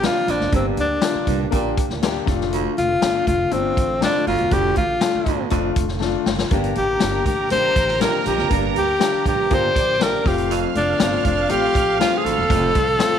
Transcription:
Already playing: tonewheel organ D3 A#3 G4
0.01 baritone saxophone F2, grand piano A#3 D4 G4, snare, closed hi-hat
0.05 tenor saxophone F4
0.27 upright bass A#1, baritone saxophone F2, tenor saxophone D4, snare, closed hi-hat
0.40 upright bass F#1, snare
0.52 upright bass G1, baritone saxophone G2, grand piano A#3 D4 G4, tenor saxophone C4, kick, closed hi-hat
0.77 upright bass D2, tenor saxophone D4, closed hi-hat
1.02 grand piano A#3 D4 F4, snare, closed hi-hat
1.15 muted upright bass stroke
1.27 upright bass C2, baritone saxophone G2, kick, closed hi-hat
1.51 upright bass A#1, baritone saxophone A#2, grand piano A#3 D4 G4, kick, closed hi-hat
1.77 kick, closed hi-hat
1.90 upright bass D2, snare
2.02 grand piano A#3 D4 G4, snare, closed hi-hat
2.26 upright bass F1, grand piano A3 D4 F4, tonewheel organ A3 F4, kick, snare, closed hi-hat
2.41 snare
2.53 baritone saxophone D2, closed hi-hat
2.78 upright bass F1, tenor saxophone F4, closed hi-hat
3.01 upright bass G1, grand piano A3 D4 F4, snare, closed hi-hat
3.27 upright bass F1, tenor saxophone F4, kick, closed hi-hat
3.51 upright bass G1, grand piano A3 D4 F4, tenor saxophone C4, closed hi-hat
3.77 upright bass A1, kick, closed hi-hat
4.01 baritone saxophone F2, grand piano A3 D4 F4, tenor saxophone D4, snare, closed hi-hat
4.27 upright bass G1, baritone saxophone D2, tenor saxophone F4, open hi-hat
4.38 upright bass E1, closed hi-hat
4.51 upright bass F1, baritone saxophone D2, grand piano A3 D4 F4, tenor saxophone G4, kick, closed hi-hat
4.76 upright bass A1, tenor saxophone F4, kick, closed hi-hat
5.01 grand piano A3 D4 F4, snare, closed hi-hat
5.15 muted upright bass stroke
5.26 upright bass G1, baritone saxophone D2, kick, closed hi-hat
5.50 upright bass F1, baritone saxophone F2, grand piano A3 D4 F4, kick, closed hi-hat
5.76 upright bass F1, kick, closed hi-hat
5.88 snare
6.00 grand piano A3 D4 F4, snare
6.26 upright bass F#1, snare
6.39 snare
6.51 upright bass G1, baritone saxophone G2, tonewheel organ D3 A#3 G4, grand piano A#3 D4 G4, violin section A#4 A#5, kick, closed hi-hat
6.64 closed hi-hat
6.75 upright bass A1, tenor saxophone G4, closed hi-hat
7.00 upright bass G1, grand piano A#3 D4 G4, snare, closed hi-hat
7.26 upright bass A1, tenor saxophone G4, kick, closed hi-hat
7.50 upright bass A#1, grand piano A#3 D4 G4, tenor saxophone C5, closed hi-hat
7.76 upright bass A1, kick, closed hi-hat
7.88 snare
8.00 baritone saxophone F2, grand piano A#3 D4 G4, tenor saxophone A#4, snare, closed hi-hat
8.25 upright bass A#1, baritone saxophone F2, tenor saxophone G4, snare, closed hi-hat
8.38 upright bass F#1, snare
8.50 upright bass G1, baritone saxophone G2, grand piano A#3 D4 A#4, kick, closed hi-hat
8.76 upright bass D2, tenor saxophone G4, closed hi-hat
8.99 grand piano A#3 D4 G4, snare, closed hi-hat
9.13 muted upright bass stroke
9.25 upright bass A#1, baritone saxophone G2, tenor saxophone G4, kick, closed hi-hat
9.50 upright bass G1, baritone saxophone A#2, grand piano A#3 D4 G4, tenor saxophone C5, kick, closed hi-hat
9.75 upright bass A#1, violin section D5 D6, kick, closed hi-hat
9.99 grand piano A#3 D4 G4, tenor saxophone A#4, snare, closed hi-hat
10.24 upright bass F1, tonewheel organ F3 C4 A4, grand piano A3 C4 F4, tenor saxophone G4, violin section F5 F6, kick, snare, open hi-hat
10.38 closed hi-hat
10.51 baritone saxophone F2, closed hi-hat
10.75 upright bass F1, tenor saxophone D4, closed hi-hat
10.99 upright bass G1, grand piano A3 C4 F4, snare, closed hi-hat
11.25 upright bass F1, tenor saxophone D4, kick, closed hi-hat
11.49 upright bass A1, grand piano A3 C4 F4, tenor saxophone G4, closed hi-hat
11.75 upright bass A#1, kick, closed hi-hat
11.99 baritone saxophone G2, grand piano A3 C4 F4, tenor saxophone F4, snare, closed hi-hat
12.18 tenor saxophone G#4
12.24 upright bass A1, baritone saxophone D2, tenor saxophone A4, closed hi-hat
12.38 upright bass E1
12.49 upright bass F1, baritone saxophone F2, grand piano A3 C4 F4, kick, closed hi-hat
12.75 upright bass C2, kick, closed hi-hat
12.99 grand piano A3 C4 F4, snare, closed hi-hat
13.13 muted upright bass stroke

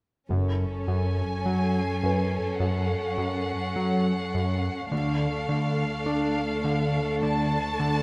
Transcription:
0.30 double bass section F#1, analog synth bass F#2, cello section F#2, violin section C#4 A4 C#6
0.87 analog synth bass F#2, violin section G#5
1.45 analog synth bass F#3, violin section C7
2.03 analog synth bass F#2, felt piano B4
2.60 analog synth bass F#2, violin section F#5
3.18 analog synth bass F#2
3.76 analog synth bass F#3
4.35 analog synth bass F#2
4.91 cello section D2, double bass section D2, analog synth bass D3, violin section D4 A4 F5
5.49 analog synth bass D3
6.06 analog synth bass D4
6.64 analog synth bass D3
7.23 analog synth bass D3, violin section A5
7.80 analog synth bass D3

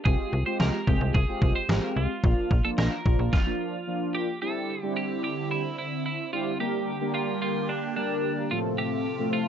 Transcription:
0.05 fm bass C2, analog polysynth G#3 C4 F4 G4, clean electric guitar G#4, kick
0.33 fm bass C2
0.46 analog polysynth G#3 C4 F4 G4, clean electric guitar C5
0.60 fm bass C2, clean electric guitar A#4, snare
0.87 fm bass C2, analog polysynth G#3 C4 F4 G#4, clean electric guitar G4, kick
1.01 fm bass C2
1.14 fm bass C2, clean electric guitar G#4, kick
1.28 analog polysynth G#3 C4 F4 G4
1.42 fm bass C2, kick
1.56 clean electric guitar C5
1.69 fm bass G#1, analog polysynth G#3 C4 F4 G4, clean electric guitar A#4, snare
1.96 fm bass C2, clean electric guitar F4
2.24 fm bass A#1, analog polysynth F3 A#3 D4 F4, kick
2.51 fm bass A#1, kick
2.65 analog polysynth F3 A#3 D4 F4, clean electric guitar A4
2.78 fm bass A#1, clean electric guitar A#4, snare
3.05 fm bass A#1, analog polysynth F3 A#3 D4 F4, kick
3.19 fm bass A#1
3.33 clean electric guitar F4, kick, snare
3.46 analog polysynth F3 A#3 D4 F4
3.87 analog polysynth F3 A#3 D4 F4
4.15 clean electric guitar G4
4.42 analog synth pad D3 C4 E4, analog polysynth G3 C4 D4 E4 G4, clean electric guitar A4
4.83 analog polysynth G3 C4 D4 E4 G4
4.97 clean electric guitar G4
5.24 clean electric guitar G4
5.51 clean electric guitar E4
5.78 clean electric guitar E4
6.06 clean electric guitar E4
6.33 analog polysynth G3 C4 D4 E4 G4, clean electric guitar F4
6.60 analog synth pad D3 A#3 G4, analog polysynth G3 A#3 D4 G4 A#4, clean electric guitar G4
7.01 analog polysynth G3 A#3 D4 G4 A#4
7.14 clean electric guitar F4
7.42 clean electric guitar F4
7.69 clean electric guitar D4
7.96 analog polysynth G3 A#3 D4 G4 A#4, clean electric guitar D4
8.51 analog polysynth A2 F3 A3 C4 F4 A4, analog synth pad C3 A3 F4, clean electric guitar F4
8.78 clean electric guitar G4
9.19 analog polysynth A2 F3 A3 C4 F4 A4
9.33 clean electric guitar F4

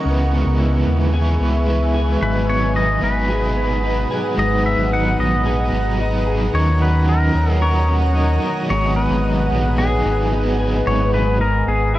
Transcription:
Already playing: clean electric guitar C#4 D#4 A#4
0.03 sub bass C#2, overdriven electric guitar C#3 G#3 B3, clean electric guitar C#3, ambient pad B4 E5 G#5 C#6
0.09 overdriven electric guitar E4 B4
0.32 clean electric guitar B3
0.46 sub bass C#2
0.59 clean electric guitar E4
0.87 sub bass D#2, clean electric guitar B3
1.12 overdriven electric guitar G#3 B3 E4, clean electric guitar G#4
1.17 overdriven electric guitar B4
1.40 sub bass C#2, clean electric guitar B3
1.66 overdriven electric guitar G#3 B3 E4, clean electric guitar E4
1.71 overdriven electric guitar B4
1.94 clean electric guitar G#4
2.20 sub bass G#1, overdriven electric guitar G#2 D#3 F#3 B3 D#4 B4, clean electric guitar G#2, pedal steel guitar B4, ambient pad F#5 D#6
2.49 clean electric guitar B3, pedal steel guitar C#5
2.75 clean electric guitar D#4, pedal steel guitar D#5
3.01 sub bass G#1, clean electric guitar B3, overdriven electric guitar B3 D#4 B4, pedal steel guitar B4
3.05 overdriven electric guitar F#3
3.28 overdriven electric guitar F#3 B3 D#4, clean electric guitar G#4
3.32 overdriven electric guitar B4
3.57 clean electric guitar B3
3.82 overdriven electric guitar F#3 B3 D#4, clean electric guitar D#4
3.86 overdriven electric guitar B4
4.11 clean electric guitar G#4
4.35 sub bass G#1, overdriven electric guitar G#2 D#3 F#3, clean electric guitar G#2, ambient pad A#5
4.39 overdriven electric guitar B3 D#4 B4, pedal steel guitar D#5
4.65 clean electric guitar B3, pedal steel guitar E5
4.78 sub bass G#1
4.92 clean electric guitar D#4, pedal steel guitar F#5
5.19 sub bass A#1, clean electric guitar B3, pedal steel guitar D#5
5.44 overdriven electric guitar F#3 B3 D#4, clean electric guitar G#4
5.49 overdriven electric guitar B4
5.72 sub bass G#1, clean electric guitar B3
5.98 overdriven electric guitar F#3 B3 D#4, clean electric guitar D#4
6.02 overdriven electric guitar B4
6.27 clean electric guitar G#4
6.53 sub bass D#2, overdriven electric guitar D#3 F#3 C#4 D#4 A#4, clean electric guitar D#3, ambient pad C#5 A#5 D#6, pedal steel guitar C#5
6.81 clean electric guitar C#4, pedal steel guitar B4
7.08 clean electric guitar D#4, pedal steel guitar A#4
7.33 sub bass D#2, clean electric guitar C#4, overdriven electric guitar D#4 A#4
7.38 overdriven electric guitar C#4
7.52 pedal steel guitar G#4
7.60 overdriven electric guitar F#3 C#4 D#4, clean electric guitar A#4, pedal steel guitar C#5
7.65 overdriven electric guitar A#4
7.88 clean electric guitar C#4
8.14 overdriven electric guitar F#3 C#4 D#4, clean electric guitar D#4
8.19 overdriven electric guitar A#4
8.42 clean electric guitar A#4
8.69 sub bass G#1, overdriven electric guitar G#2 D#3 F#3 B3 D#4 G#4, clean electric guitar G#2, ambient pad B4 G#5, pedal steel guitar C#5
8.96 clean electric guitar B3, pedal steel guitar B4
9.10 sub bass G#1
9.24 clean electric guitar D#4
9.50 sub bass A#1, clean electric guitar B3, overdriven electric guitar B3 D#4 G#4
9.54 overdriven electric guitar F#3
9.76 overdriven electric guitar F#3 B3 D#4, pedal steel guitar G#4, clean electric guitar G#4
9.81 overdriven electric guitar G#4
10.05 sub bass G#1, clean electric guitar B3
10.31 overdriven electric guitar F#3 B3 D#4, clean electric guitar D#4
10.35 overdriven electric guitar G#4
10.59 clean electric guitar G#4
10.86 sub bass G#1, clean electric guitar G#2, ambient pad B4 F#5 G#5 D#6, pedal steel guitar C#5
11.13 clean electric guitar B3, pedal steel guitar B4
11.40 clean electric guitar D#4, pedal steel guitar A#4
11.67 sub bass G#1, clean electric guitar B3, pedal steel guitar G#4
11.94 pedal steel guitar F#4, clean electric guitar G#4

